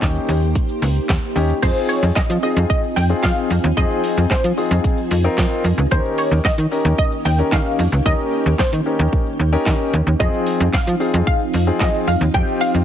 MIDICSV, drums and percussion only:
0, 0, Header, 1, 2, 480
1, 0, Start_track
1, 0, Key_signature, -4, "minor"
1, 0, Tempo, 535714
1, 1459, Time_signature, 4, 2, 24, 8
1, 11508, End_track
2, 0, Start_track
2, 0, Title_t, "Drums"
2, 17, Note_on_c, 9, 36, 106
2, 19, Note_on_c, 9, 39, 112
2, 21, Note_on_c, 9, 42, 67
2, 21, Note_on_c, 9, 82, 66
2, 26, Note_on_c, 9, 38, 89
2, 106, Note_off_c, 9, 36, 0
2, 108, Note_off_c, 9, 39, 0
2, 110, Note_off_c, 9, 42, 0
2, 110, Note_off_c, 9, 82, 0
2, 115, Note_off_c, 9, 38, 0
2, 136, Note_on_c, 9, 82, 59
2, 225, Note_off_c, 9, 82, 0
2, 257, Note_on_c, 9, 46, 73
2, 257, Note_on_c, 9, 82, 54
2, 347, Note_off_c, 9, 46, 0
2, 347, Note_off_c, 9, 82, 0
2, 379, Note_on_c, 9, 82, 70
2, 468, Note_off_c, 9, 82, 0
2, 496, Note_on_c, 9, 42, 84
2, 496, Note_on_c, 9, 82, 82
2, 497, Note_on_c, 9, 36, 116
2, 586, Note_off_c, 9, 36, 0
2, 586, Note_off_c, 9, 42, 0
2, 586, Note_off_c, 9, 82, 0
2, 614, Note_on_c, 9, 82, 53
2, 703, Note_off_c, 9, 82, 0
2, 737, Note_on_c, 9, 46, 80
2, 737, Note_on_c, 9, 82, 56
2, 827, Note_off_c, 9, 46, 0
2, 827, Note_off_c, 9, 82, 0
2, 857, Note_on_c, 9, 82, 80
2, 947, Note_off_c, 9, 82, 0
2, 978, Note_on_c, 9, 36, 102
2, 978, Note_on_c, 9, 39, 117
2, 978, Note_on_c, 9, 42, 79
2, 978, Note_on_c, 9, 82, 81
2, 985, Note_on_c, 9, 38, 97
2, 1067, Note_off_c, 9, 36, 0
2, 1068, Note_off_c, 9, 39, 0
2, 1068, Note_off_c, 9, 42, 0
2, 1068, Note_off_c, 9, 82, 0
2, 1075, Note_off_c, 9, 38, 0
2, 1099, Note_on_c, 9, 82, 53
2, 1188, Note_off_c, 9, 82, 0
2, 1220, Note_on_c, 9, 46, 67
2, 1220, Note_on_c, 9, 82, 50
2, 1309, Note_off_c, 9, 46, 0
2, 1309, Note_off_c, 9, 82, 0
2, 1337, Note_on_c, 9, 82, 66
2, 1426, Note_off_c, 9, 82, 0
2, 1456, Note_on_c, 9, 49, 109
2, 1457, Note_on_c, 9, 42, 81
2, 1457, Note_on_c, 9, 82, 79
2, 1458, Note_on_c, 9, 36, 117
2, 1459, Note_off_c, 9, 82, 0
2, 1459, Note_on_c, 9, 82, 62
2, 1546, Note_off_c, 9, 42, 0
2, 1546, Note_off_c, 9, 49, 0
2, 1547, Note_off_c, 9, 36, 0
2, 1549, Note_off_c, 9, 82, 0
2, 1576, Note_on_c, 9, 82, 52
2, 1582, Note_off_c, 9, 82, 0
2, 1582, Note_on_c, 9, 82, 51
2, 1672, Note_off_c, 9, 82, 0
2, 1695, Note_on_c, 9, 82, 54
2, 1696, Note_off_c, 9, 82, 0
2, 1696, Note_on_c, 9, 46, 89
2, 1696, Note_on_c, 9, 82, 65
2, 1785, Note_off_c, 9, 46, 0
2, 1785, Note_off_c, 9, 82, 0
2, 1817, Note_on_c, 9, 82, 73
2, 1821, Note_off_c, 9, 82, 0
2, 1821, Note_on_c, 9, 82, 55
2, 1911, Note_off_c, 9, 82, 0
2, 1937, Note_on_c, 9, 36, 120
2, 1938, Note_on_c, 9, 39, 120
2, 1939, Note_on_c, 9, 82, 67
2, 1940, Note_off_c, 9, 82, 0
2, 1940, Note_on_c, 9, 42, 69
2, 1940, Note_on_c, 9, 82, 71
2, 1945, Note_on_c, 9, 38, 97
2, 2026, Note_off_c, 9, 36, 0
2, 2028, Note_off_c, 9, 39, 0
2, 2030, Note_off_c, 9, 42, 0
2, 2030, Note_off_c, 9, 82, 0
2, 2035, Note_off_c, 9, 38, 0
2, 2055, Note_on_c, 9, 82, 64
2, 2058, Note_off_c, 9, 82, 0
2, 2058, Note_on_c, 9, 82, 52
2, 2148, Note_off_c, 9, 82, 0
2, 2177, Note_on_c, 9, 46, 76
2, 2177, Note_on_c, 9, 82, 54
2, 2180, Note_off_c, 9, 82, 0
2, 2180, Note_on_c, 9, 82, 55
2, 2266, Note_off_c, 9, 46, 0
2, 2269, Note_off_c, 9, 82, 0
2, 2298, Note_on_c, 9, 82, 55
2, 2388, Note_off_c, 9, 82, 0
2, 2418, Note_on_c, 9, 36, 127
2, 2418, Note_on_c, 9, 42, 90
2, 2418, Note_on_c, 9, 82, 87
2, 2508, Note_off_c, 9, 36, 0
2, 2508, Note_off_c, 9, 42, 0
2, 2508, Note_off_c, 9, 82, 0
2, 2537, Note_on_c, 9, 82, 59
2, 2627, Note_off_c, 9, 82, 0
2, 2659, Note_on_c, 9, 46, 83
2, 2659, Note_on_c, 9, 82, 60
2, 2749, Note_off_c, 9, 46, 0
2, 2749, Note_off_c, 9, 82, 0
2, 2778, Note_on_c, 9, 82, 56
2, 2779, Note_off_c, 9, 82, 0
2, 2779, Note_on_c, 9, 82, 84
2, 2869, Note_off_c, 9, 82, 0
2, 2897, Note_on_c, 9, 82, 70
2, 2899, Note_off_c, 9, 82, 0
2, 2899, Note_on_c, 9, 36, 111
2, 2899, Note_on_c, 9, 39, 124
2, 2899, Note_on_c, 9, 42, 85
2, 2899, Note_on_c, 9, 82, 82
2, 2906, Note_on_c, 9, 38, 98
2, 2988, Note_off_c, 9, 36, 0
2, 2989, Note_off_c, 9, 39, 0
2, 2989, Note_off_c, 9, 42, 0
2, 2989, Note_off_c, 9, 82, 0
2, 2996, Note_off_c, 9, 38, 0
2, 3015, Note_on_c, 9, 82, 55
2, 3020, Note_off_c, 9, 82, 0
2, 3020, Note_on_c, 9, 82, 57
2, 3110, Note_off_c, 9, 82, 0
2, 3139, Note_on_c, 9, 82, 52
2, 3140, Note_off_c, 9, 82, 0
2, 3140, Note_on_c, 9, 46, 70
2, 3140, Note_on_c, 9, 82, 51
2, 3230, Note_off_c, 9, 46, 0
2, 3230, Note_off_c, 9, 82, 0
2, 3259, Note_on_c, 9, 82, 73
2, 3260, Note_off_c, 9, 82, 0
2, 3260, Note_on_c, 9, 82, 50
2, 3349, Note_off_c, 9, 82, 0
2, 3378, Note_on_c, 9, 42, 81
2, 3378, Note_on_c, 9, 82, 83
2, 3379, Note_off_c, 9, 82, 0
2, 3379, Note_on_c, 9, 36, 113
2, 3379, Note_on_c, 9, 82, 62
2, 3468, Note_off_c, 9, 36, 0
2, 3468, Note_off_c, 9, 42, 0
2, 3468, Note_off_c, 9, 82, 0
2, 3497, Note_on_c, 9, 82, 52
2, 3502, Note_off_c, 9, 82, 0
2, 3502, Note_on_c, 9, 82, 49
2, 3592, Note_off_c, 9, 82, 0
2, 3615, Note_on_c, 9, 82, 55
2, 3618, Note_off_c, 9, 82, 0
2, 3618, Note_on_c, 9, 46, 91
2, 3618, Note_on_c, 9, 82, 59
2, 3707, Note_off_c, 9, 46, 0
2, 3707, Note_off_c, 9, 82, 0
2, 3738, Note_on_c, 9, 82, 72
2, 3741, Note_off_c, 9, 82, 0
2, 3741, Note_on_c, 9, 82, 55
2, 3830, Note_off_c, 9, 82, 0
2, 3858, Note_on_c, 9, 36, 117
2, 3858, Note_on_c, 9, 82, 64
2, 3860, Note_on_c, 9, 39, 118
2, 3862, Note_off_c, 9, 82, 0
2, 3862, Note_on_c, 9, 42, 75
2, 3862, Note_on_c, 9, 82, 73
2, 3867, Note_on_c, 9, 38, 98
2, 3947, Note_off_c, 9, 36, 0
2, 3949, Note_off_c, 9, 39, 0
2, 3951, Note_off_c, 9, 42, 0
2, 3951, Note_off_c, 9, 82, 0
2, 3956, Note_off_c, 9, 38, 0
2, 3976, Note_on_c, 9, 82, 63
2, 3977, Note_off_c, 9, 82, 0
2, 3977, Note_on_c, 9, 82, 55
2, 4067, Note_off_c, 9, 82, 0
2, 4098, Note_on_c, 9, 46, 76
2, 4098, Note_on_c, 9, 82, 57
2, 4101, Note_off_c, 9, 82, 0
2, 4101, Note_on_c, 9, 82, 57
2, 4188, Note_off_c, 9, 46, 0
2, 4191, Note_off_c, 9, 82, 0
2, 4219, Note_on_c, 9, 82, 55
2, 4220, Note_off_c, 9, 82, 0
2, 4220, Note_on_c, 9, 82, 73
2, 4310, Note_off_c, 9, 82, 0
2, 4338, Note_on_c, 9, 42, 89
2, 4338, Note_on_c, 9, 82, 85
2, 4339, Note_on_c, 9, 36, 127
2, 4341, Note_off_c, 9, 82, 0
2, 4341, Note_on_c, 9, 82, 68
2, 4428, Note_off_c, 9, 36, 0
2, 4428, Note_off_c, 9, 42, 0
2, 4430, Note_off_c, 9, 82, 0
2, 4457, Note_on_c, 9, 82, 58
2, 4458, Note_off_c, 9, 82, 0
2, 4458, Note_on_c, 9, 82, 58
2, 4548, Note_off_c, 9, 82, 0
2, 4577, Note_on_c, 9, 46, 84
2, 4577, Note_on_c, 9, 82, 57
2, 4667, Note_off_c, 9, 46, 0
2, 4667, Note_off_c, 9, 82, 0
2, 4697, Note_on_c, 9, 82, 85
2, 4698, Note_off_c, 9, 82, 0
2, 4698, Note_on_c, 9, 82, 60
2, 4788, Note_off_c, 9, 82, 0
2, 4818, Note_on_c, 9, 82, 67
2, 4819, Note_off_c, 9, 82, 0
2, 4819, Note_on_c, 9, 36, 111
2, 4819, Note_on_c, 9, 39, 118
2, 4819, Note_on_c, 9, 42, 85
2, 4819, Note_on_c, 9, 82, 81
2, 4826, Note_on_c, 9, 38, 101
2, 4908, Note_off_c, 9, 36, 0
2, 4908, Note_off_c, 9, 39, 0
2, 4909, Note_off_c, 9, 42, 0
2, 4909, Note_off_c, 9, 82, 0
2, 4915, Note_off_c, 9, 38, 0
2, 4936, Note_on_c, 9, 82, 56
2, 4940, Note_off_c, 9, 82, 0
2, 4940, Note_on_c, 9, 82, 55
2, 5029, Note_off_c, 9, 82, 0
2, 5059, Note_on_c, 9, 82, 53
2, 5062, Note_off_c, 9, 82, 0
2, 5062, Note_on_c, 9, 46, 70
2, 5062, Note_on_c, 9, 82, 54
2, 5151, Note_off_c, 9, 46, 0
2, 5151, Note_off_c, 9, 82, 0
2, 5179, Note_on_c, 9, 82, 71
2, 5181, Note_off_c, 9, 82, 0
2, 5181, Note_on_c, 9, 82, 52
2, 5271, Note_off_c, 9, 82, 0
2, 5298, Note_on_c, 9, 36, 116
2, 5298, Note_on_c, 9, 42, 81
2, 5298, Note_on_c, 9, 82, 63
2, 5388, Note_off_c, 9, 36, 0
2, 5388, Note_off_c, 9, 42, 0
2, 5388, Note_off_c, 9, 82, 0
2, 5415, Note_on_c, 9, 82, 50
2, 5423, Note_off_c, 9, 82, 0
2, 5423, Note_on_c, 9, 82, 49
2, 5512, Note_off_c, 9, 82, 0
2, 5535, Note_on_c, 9, 82, 54
2, 5537, Note_off_c, 9, 82, 0
2, 5537, Note_on_c, 9, 46, 84
2, 5537, Note_on_c, 9, 82, 60
2, 5626, Note_off_c, 9, 46, 0
2, 5626, Note_off_c, 9, 82, 0
2, 5657, Note_on_c, 9, 82, 73
2, 5662, Note_off_c, 9, 82, 0
2, 5662, Note_on_c, 9, 82, 57
2, 5752, Note_off_c, 9, 82, 0
2, 5777, Note_on_c, 9, 36, 116
2, 5777, Note_on_c, 9, 39, 122
2, 5778, Note_on_c, 9, 82, 68
2, 5779, Note_off_c, 9, 82, 0
2, 5779, Note_on_c, 9, 42, 74
2, 5779, Note_on_c, 9, 82, 76
2, 5784, Note_on_c, 9, 38, 96
2, 5866, Note_off_c, 9, 36, 0
2, 5866, Note_off_c, 9, 39, 0
2, 5868, Note_off_c, 9, 42, 0
2, 5868, Note_off_c, 9, 82, 0
2, 5873, Note_off_c, 9, 38, 0
2, 5896, Note_on_c, 9, 82, 61
2, 5897, Note_off_c, 9, 82, 0
2, 5897, Note_on_c, 9, 82, 54
2, 5986, Note_off_c, 9, 82, 0
2, 6018, Note_on_c, 9, 46, 79
2, 6018, Note_on_c, 9, 82, 55
2, 6021, Note_off_c, 9, 82, 0
2, 6021, Note_on_c, 9, 82, 56
2, 6107, Note_off_c, 9, 46, 0
2, 6111, Note_off_c, 9, 82, 0
2, 6139, Note_on_c, 9, 82, 71
2, 6228, Note_off_c, 9, 82, 0
2, 6257, Note_on_c, 9, 42, 92
2, 6257, Note_on_c, 9, 82, 84
2, 6258, Note_off_c, 9, 82, 0
2, 6258, Note_on_c, 9, 36, 127
2, 6258, Note_on_c, 9, 82, 64
2, 6347, Note_off_c, 9, 36, 0
2, 6347, Note_off_c, 9, 42, 0
2, 6348, Note_off_c, 9, 82, 0
2, 6376, Note_on_c, 9, 82, 56
2, 6466, Note_off_c, 9, 82, 0
2, 6497, Note_on_c, 9, 46, 84
2, 6497, Note_on_c, 9, 82, 59
2, 6587, Note_off_c, 9, 46, 0
2, 6587, Note_off_c, 9, 82, 0
2, 6617, Note_on_c, 9, 82, 54
2, 6618, Note_off_c, 9, 82, 0
2, 6618, Note_on_c, 9, 82, 85
2, 6708, Note_off_c, 9, 82, 0
2, 6738, Note_on_c, 9, 82, 70
2, 6739, Note_on_c, 9, 36, 111
2, 6740, Note_on_c, 9, 39, 123
2, 6741, Note_off_c, 9, 82, 0
2, 6741, Note_on_c, 9, 42, 84
2, 6741, Note_on_c, 9, 82, 82
2, 6747, Note_on_c, 9, 38, 97
2, 6829, Note_off_c, 9, 36, 0
2, 6830, Note_off_c, 9, 39, 0
2, 6830, Note_off_c, 9, 42, 0
2, 6830, Note_off_c, 9, 82, 0
2, 6837, Note_off_c, 9, 38, 0
2, 6855, Note_on_c, 9, 82, 54
2, 6860, Note_off_c, 9, 82, 0
2, 6860, Note_on_c, 9, 82, 57
2, 6950, Note_off_c, 9, 82, 0
2, 6977, Note_on_c, 9, 82, 52
2, 6982, Note_off_c, 9, 82, 0
2, 6982, Note_on_c, 9, 46, 70
2, 6982, Note_on_c, 9, 82, 50
2, 7071, Note_off_c, 9, 46, 0
2, 7071, Note_off_c, 9, 82, 0
2, 7099, Note_on_c, 9, 82, 70
2, 7100, Note_off_c, 9, 82, 0
2, 7100, Note_on_c, 9, 82, 51
2, 7190, Note_off_c, 9, 82, 0
2, 7218, Note_on_c, 9, 82, 63
2, 7219, Note_on_c, 9, 36, 122
2, 7307, Note_off_c, 9, 82, 0
2, 7309, Note_off_c, 9, 36, 0
2, 7342, Note_on_c, 9, 82, 47
2, 7432, Note_off_c, 9, 82, 0
2, 7455, Note_on_c, 9, 82, 54
2, 7545, Note_off_c, 9, 82, 0
2, 7582, Note_on_c, 9, 82, 53
2, 7671, Note_off_c, 9, 82, 0
2, 7697, Note_on_c, 9, 82, 65
2, 7698, Note_on_c, 9, 36, 120
2, 7699, Note_on_c, 9, 39, 119
2, 7706, Note_on_c, 9, 38, 101
2, 7787, Note_off_c, 9, 36, 0
2, 7787, Note_off_c, 9, 82, 0
2, 7789, Note_off_c, 9, 39, 0
2, 7796, Note_off_c, 9, 38, 0
2, 7817, Note_on_c, 9, 82, 54
2, 7906, Note_off_c, 9, 82, 0
2, 7940, Note_on_c, 9, 82, 57
2, 8030, Note_off_c, 9, 82, 0
2, 8058, Note_on_c, 9, 82, 53
2, 8148, Note_off_c, 9, 82, 0
2, 8178, Note_on_c, 9, 36, 124
2, 8178, Note_on_c, 9, 82, 65
2, 8267, Note_off_c, 9, 82, 0
2, 8268, Note_off_c, 9, 36, 0
2, 8297, Note_on_c, 9, 82, 58
2, 8386, Note_off_c, 9, 82, 0
2, 8537, Note_on_c, 9, 82, 56
2, 8626, Note_off_c, 9, 82, 0
2, 8657, Note_on_c, 9, 82, 68
2, 8658, Note_on_c, 9, 39, 124
2, 8659, Note_on_c, 9, 36, 111
2, 8665, Note_on_c, 9, 38, 97
2, 8747, Note_off_c, 9, 82, 0
2, 8748, Note_off_c, 9, 36, 0
2, 8748, Note_off_c, 9, 39, 0
2, 8755, Note_off_c, 9, 38, 0
2, 8776, Note_on_c, 9, 82, 54
2, 8866, Note_off_c, 9, 82, 0
2, 8898, Note_on_c, 9, 82, 53
2, 8988, Note_off_c, 9, 82, 0
2, 9020, Note_on_c, 9, 82, 54
2, 9110, Note_off_c, 9, 82, 0
2, 9139, Note_on_c, 9, 36, 117
2, 9139, Note_on_c, 9, 42, 78
2, 9139, Note_on_c, 9, 82, 82
2, 9229, Note_off_c, 9, 36, 0
2, 9229, Note_off_c, 9, 42, 0
2, 9229, Note_off_c, 9, 82, 0
2, 9256, Note_on_c, 9, 82, 52
2, 9262, Note_off_c, 9, 82, 0
2, 9262, Note_on_c, 9, 82, 46
2, 9351, Note_off_c, 9, 82, 0
2, 9374, Note_on_c, 9, 82, 56
2, 9377, Note_off_c, 9, 82, 0
2, 9377, Note_on_c, 9, 46, 84
2, 9377, Note_on_c, 9, 82, 63
2, 9466, Note_off_c, 9, 46, 0
2, 9466, Note_off_c, 9, 82, 0
2, 9497, Note_on_c, 9, 82, 74
2, 9498, Note_off_c, 9, 82, 0
2, 9498, Note_on_c, 9, 82, 54
2, 9587, Note_off_c, 9, 82, 0
2, 9617, Note_on_c, 9, 36, 118
2, 9617, Note_on_c, 9, 82, 66
2, 9618, Note_on_c, 9, 39, 117
2, 9620, Note_off_c, 9, 82, 0
2, 9620, Note_on_c, 9, 42, 73
2, 9620, Note_on_c, 9, 82, 73
2, 9625, Note_on_c, 9, 38, 98
2, 9707, Note_off_c, 9, 36, 0
2, 9708, Note_off_c, 9, 39, 0
2, 9710, Note_off_c, 9, 42, 0
2, 9710, Note_off_c, 9, 82, 0
2, 9715, Note_off_c, 9, 38, 0
2, 9736, Note_on_c, 9, 82, 54
2, 9737, Note_off_c, 9, 82, 0
2, 9737, Note_on_c, 9, 82, 63
2, 9826, Note_off_c, 9, 82, 0
2, 9859, Note_on_c, 9, 46, 77
2, 9859, Note_on_c, 9, 82, 57
2, 9949, Note_off_c, 9, 46, 0
2, 9949, Note_off_c, 9, 82, 0
2, 9978, Note_on_c, 9, 82, 54
2, 9979, Note_off_c, 9, 82, 0
2, 9979, Note_on_c, 9, 82, 74
2, 10069, Note_off_c, 9, 82, 0
2, 10098, Note_on_c, 9, 36, 119
2, 10098, Note_on_c, 9, 42, 89
2, 10098, Note_on_c, 9, 82, 88
2, 10099, Note_off_c, 9, 82, 0
2, 10099, Note_on_c, 9, 82, 65
2, 10187, Note_off_c, 9, 42, 0
2, 10188, Note_off_c, 9, 36, 0
2, 10189, Note_off_c, 9, 82, 0
2, 10215, Note_on_c, 9, 82, 55
2, 10219, Note_off_c, 9, 82, 0
2, 10219, Note_on_c, 9, 82, 61
2, 10308, Note_off_c, 9, 82, 0
2, 10336, Note_on_c, 9, 46, 84
2, 10336, Note_on_c, 9, 82, 61
2, 10426, Note_off_c, 9, 46, 0
2, 10426, Note_off_c, 9, 82, 0
2, 10456, Note_on_c, 9, 82, 84
2, 10458, Note_off_c, 9, 82, 0
2, 10458, Note_on_c, 9, 82, 58
2, 10548, Note_off_c, 9, 82, 0
2, 10576, Note_on_c, 9, 39, 124
2, 10577, Note_on_c, 9, 42, 88
2, 10577, Note_on_c, 9, 82, 84
2, 10578, Note_on_c, 9, 36, 108
2, 10579, Note_off_c, 9, 82, 0
2, 10579, Note_on_c, 9, 82, 72
2, 10583, Note_on_c, 9, 38, 97
2, 10666, Note_off_c, 9, 39, 0
2, 10666, Note_off_c, 9, 42, 0
2, 10667, Note_off_c, 9, 36, 0
2, 10668, Note_off_c, 9, 82, 0
2, 10673, Note_off_c, 9, 38, 0
2, 10697, Note_on_c, 9, 82, 58
2, 10787, Note_off_c, 9, 82, 0
2, 10819, Note_on_c, 9, 82, 52
2, 10820, Note_off_c, 9, 82, 0
2, 10820, Note_on_c, 9, 46, 70
2, 10820, Note_on_c, 9, 82, 52
2, 10909, Note_off_c, 9, 46, 0
2, 10909, Note_off_c, 9, 82, 0
2, 10936, Note_on_c, 9, 82, 70
2, 10941, Note_off_c, 9, 82, 0
2, 10941, Note_on_c, 9, 82, 51
2, 11030, Note_off_c, 9, 82, 0
2, 11057, Note_on_c, 9, 42, 79
2, 11057, Note_on_c, 9, 82, 76
2, 11058, Note_on_c, 9, 36, 118
2, 11059, Note_off_c, 9, 82, 0
2, 11059, Note_on_c, 9, 82, 65
2, 11147, Note_off_c, 9, 42, 0
2, 11148, Note_off_c, 9, 36, 0
2, 11148, Note_off_c, 9, 82, 0
2, 11176, Note_on_c, 9, 82, 52
2, 11183, Note_off_c, 9, 82, 0
2, 11183, Note_on_c, 9, 82, 49
2, 11272, Note_off_c, 9, 82, 0
2, 11295, Note_on_c, 9, 82, 54
2, 11296, Note_off_c, 9, 82, 0
2, 11296, Note_on_c, 9, 46, 88
2, 11296, Note_on_c, 9, 82, 64
2, 11385, Note_off_c, 9, 46, 0
2, 11385, Note_off_c, 9, 82, 0
2, 11416, Note_on_c, 9, 82, 75
2, 11420, Note_off_c, 9, 82, 0
2, 11420, Note_on_c, 9, 82, 56
2, 11508, Note_off_c, 9, 82, 0
2, 11508, End_track
0, 0, End_of_file